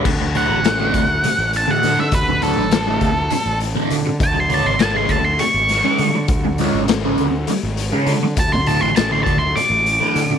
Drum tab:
CC |x------|-------|-------|-------|
HH |-xxxxxx|xxxxxxx|xxxxxxx|xxxxxxx|
SD |--o---o|--o----|--o--o-|-oo----|
BD |o--o---|o--o---|o--o---|o------|

CC |-------|
HH |xxxxxxx|
SD |--o----|
BD |o--o---|